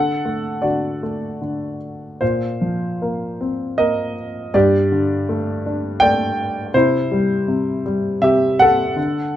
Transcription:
0, 0, Header, 1, 2, 480
1, 0, Start_track
1, 0, Tempo, 748130
1, 399, Tempo, 790514
1, 1368, Time_signature, 3, 2, 24, 8
1, 2319, Tempo, 741656
1, 5932, End_track
2, 0, Start_track
2, 0, Title_t, "Grand piano"
2, 0, Program_c, 0, 0
2, 0, Note_on_c, 0, 50, 54
2, 0, Note_on_c, 0, 69, 71
2, 0, Note_on_c, 0, 78, 95
2, 58, Control_c, 0, 64, 127
2, 162, Note_on_c, 0, 57, 41
2, 373, Note_off_c, 0, 69, 0
2, 396, Note_on_c, 0, 74, 60
2, 398, Note_off_c, 0, 50, 0
2, 403, Note_on_c, 0, 66, 50
2, 408, Note_on_c, 0, 50, 44
2, 410, Note_off_c, 0, 78, 0
2, 637, Note_off_c, 0, 57, 0
2, 646, Note_on_c, 0, 57, 41
2, 872, Note_off_c, 0, 50, 0
2, 881, Note_on_c, 0, 50, 42
2, 1099, Note_off_c, 0, 74, 0
2, 1102, Note_off_c, 0, 66, 0
2, 1352, Note_off_c, 0, 57, 0
2, 1354, Note_off_c, 0, 50, 0
2, 1361, Note_on_c, 0, 72, 65
2, 1366, Note_on_c, 0, 65, 54
2, 1367, Note_on_c, 0, 46, 50
2, 1375, Control_c, 0, 64, 0
2, 1470, Control_c, 0, 64, 127
2, 1609, Note_on_c, 0, 53, 40
2, 1855, Note_on_c, 0, 58, 44
2, 2090, Note_on_c, 0, 60, 46
2, 2294, Note_off_c, 0, 65, 0
2, 2312, Note_off_c, 0, 58, 0
2, 2315, Note_on_c, 0, 75, 79
2, 2321, Note_on_c, 0, 58, 49
2, 2322, Note_on_c, 0, 70, 53
2, 2346, Note_off_c, 0, 72, 0
2, 2537, Note_off_c, 0, 53, 0
2, 2777, Note_off_c, 0, 75, 0
2, 2779, Note_off_c, 0, 46, 0
2, 2781, Note_off_c, 0, 70, 0
2, 2785, Note_off_c, 0, 60, 0
2, 2792, Note_off_c, 0, 58, 0
2, 2808, Note_on_c, 0, 43, 60
2, 2809, Note_on_c, 0, 74, 85
2, 2815, Control_c, 0, 64, 0
2, 2817, Note_on_c, 0, 67, 69
2, 2932, Control_c, 0, 64, 127
2, 3053, Note_on_c, 0, 50, 47
2, 3294, Note_on_c, 0, 57, 50
2, 3534, Note_on_c, 0, 62, 49
2, 3736, Note_off_c, 0, 74, 0
2, 3740, Note_off_c, 0, 67, 0
2, 3753, Note_on_c, 0, 79, 102
2, 3760, Note_off_c, 0, 57, 0
2, 3766, Note_on_c, 0, 74, 74
2, 3769, Note_on_c, 0, 57, 55
2, 3974, Note_off_c, 0, 50, 0
2, 4203, Note_off_c, 0, 79, 0
2, 4208, Note_off_c, 0, 43, 0
2, 4210, Note_off_c, 0, 74, 0
2, 4217, Note_off_c, 0, 62, 0
2, 4223, Note_off_c, 0, 57, 0
2, 4234, Note_on_c, 0, 48, 63
2, 4234, Note_on_c, 0, 72, 84
2, 4242, Control_c, 0, 64, 0
2, 4248, Note_on_c, 0, 64, 66
2, 4362, Control_c, 0, 64, 127
2, 4475, Note_on_c, 0, 55, 51
2, 4702, Note_off_c, 0, 48, 0
2, 4712, Note_on_c, 0, 48, 51
2, 4920, Note_off_c, 0, 72, 0
2, 4927, Note_off_c, 0, 64, 0
2, 4945, Note_off_c, 0, 55, 0
2, 4955, Note_on_c, 0, 55, 50
2, 5178, Note_off_c, 0, 48, 0
2, 5188, Note_on_c, 0, 48, 47
2, 5188, Note_on_c, 0, 76, 88
2, 5203, Note_on_c, 0, 67, 65
2, 5422, Note_off_c, 0, 67, 0
2, 5432, Note_on_c, 0, 78, 98
2, 5439, Note_off_c, 0, 76, 0
2, 5448, Note_on_c, 0, 69, 71
2, 5658, Note_off_c, 0, 55, 0
2, 5661, Note_off_c, 0, 48, 0
2, 5671, Note_on_c, 0, 50, 56
2, 5685, Control_c, 0, 64, 0
2, 5796, Control_c, 0, 64, 127
2, 5932, Note_off_c, 0, 50, 0
2, 5932, Note_off_c, 0, 69, 0
2, 5932, Note_off_c, 0, 78, 0
2, 5932, End_track
0, 0, End_of_file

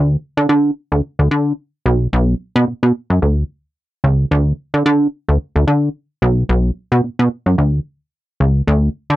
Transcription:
0, 0, Header, 1, 2, 480
1, 0, Start_track
1, 0, Tempo, 545455
1, 1874, Time_signature, 4, 2, 24, 8
1, 8062, End_track
2, 0, Start_track
2, 0, Title_t, "Analog synth bass"
2, 0, Program_c, 0, 38
2, 0, Note_on_c, 0, 38, 113
2, 146, Note_off_c, 0, 38, 0
2, 328, Note_on_c, 0, 50, 94
2, 413, Note_off_c, 0, 50, 0
2, 432, Note_on_c, 0, 50, 93
2, 625, Note_off_c, 0, 50, 0
2, 807, Note_on_c, 0, 38, 85
2, 892, Note_off_c, 0, 38, 0
2, 1047, Note_on_c, 0, 38, 88
2, 1132, Note_off_c, 0, 38, 0
2, 1154, Note_on_c, 0, 50, 97
2, 1346, Note_off_c, 0, 50, 0
2, 1633, Note_on_c, 0, 35, 106
2, 1825, Note_off_c, 0, 35, 0
2, 1873, Note_on_c, 0, 35, 120
2, 2065, Note_off_c, 0, 35, 0
2, 2249, Note_on_c, 0, 47, 109
2, 2333, Note_off_c, 0, 47, 0
2, 2354, Note_on_c, 0, 47, 47
2, 2408, Note_off_c, 0, 47, 0
2, 2488, Note_on_c, 0, 47, 88
2, 2573, Note_off_c, 0, 47, 0
2, 2728, Note_on_c, 0, 42, 87
2, 2812, Note_off_c, 0, 42, 0
2, 2835, Note_on_c, 0, 38, 80
2, 3026, Note_off_c, 0, 38, 0
2, 3554, Note_on_c, 0, 37, 99
2, 3745, Note_off_c, 0, 37, 0
2, 3795, Note_on_c, 0, 38, 115
2, 3986, Note_off_c, 0, 38, 0
2, 4169, Note_on_c, 0, 50, 90
2, 4253, Note_off_c, 0, 50, 0
2, 4274, Note_on_c, 0, 50, 111
2, 4466, Note_off_c, 0, 50, 0
2, 4650, Note_on_c, 0, 38, 91
2, 4734, Note_off_c, 0, 38, 0
2, 4889, Note_on_c, 0, 38, 102
2, 4973, Note_off_c, 0, 38, 0
2, 4993, Note_on_c, 0, 50, 92
2, 5185, Note_off_c, 0, 50, 0
2, 5473, Note_on_c, 0, 35, 111
2, 5665, Note_off_c, 0, 35, 0
2, 5712, Note_on_c, 0, 35, 116
2, 5905, Note_off_c, 0, 35, 0
2, 6087, Note_on_c, 0, 47, 96
2, 6172, Note_off_c, 0, 47, 0
2, 6194, Note_on_c, 0, 47, 48
2, 6248, Note_off_c, 0, 47, 0
2, 6329, Note_on_c, 0, 47, 102
2, 6413, Note_off_c, 0, 47, 0
2, 6566, Note_on_c, 0, 42, 80
2, 6651, Note_off_c, 0, 42, 0
2, 6672, Note_on_c, 0, 38, 86
2, 6864, Note_off_c, 0, 38, 0
2, 7394, Note_on_c, 0, 37, 89
2, 7586, Note_off_c, 0, 37, 0
2, 7633, Note_on_c, 0, 38, 118
2, 7825, Note_off_c, 0, 38, 0
2, 8007, Note_on_c, 0, 50, 96
2, 8062, Note_off_c, 0, 50, 0
2, 8062, End_track
0, 0, End_of_file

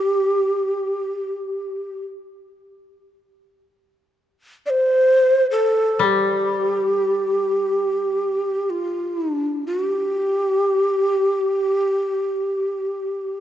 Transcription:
0, 0, Header, 1, 3, 480
1, 0, Start_track
1, 0, Tempo, 500000
1, 12867, End_track
2, 0, Start_track
2, 0, Title_t, "Shakuhachi"
2, 0, Program_c, 0, 77
2, 0, Note_on_c, 0, 67, 63
2, 1968, Note_off_c, 0, 67, 0
2, 4475, Note_on_c, 0, 74, 59
2, 4511, Note_on_c, 0, 72, 64
2, 4520, Note_off_c, 0, 74, 0
2, 5242, Note_off_c, 0, 72, 0
2, 5290, Note_on_c, 0, 69, 55
2, 5795, Note_on_c, 0, 67, 54
2, 5809, Note_off_c, 0, 69, 0
2, 8353, Note_on_c, 0, 65, 53
2, 8367, Note_off_c, 0, 67, 0
2, 8958, Note_off_c, 0, 65, 0
2, 8958, Note_on_c, 0, 62, 53
2, 9259, Note_off_c, 0, 62, 0
2, 9280, Note_on_c, 0, 66, 64
2, 9462, Note_off_c, 0, 66, 0
2, 9462, Note_on_c, 0, 67, 64
2, 12867, Note_off_c, 0, 67, 0
2, 12867, End_track
3, 0, Start_track
3, 0, Title_t, "Koto"
3, 0, Program_c, 1, 107
3, 5753, Note_on_c, 1, 55, 31
3, 8699, Note_off_c, 1, 55, 0
3, 12867, End_track
0, 0, End_of_file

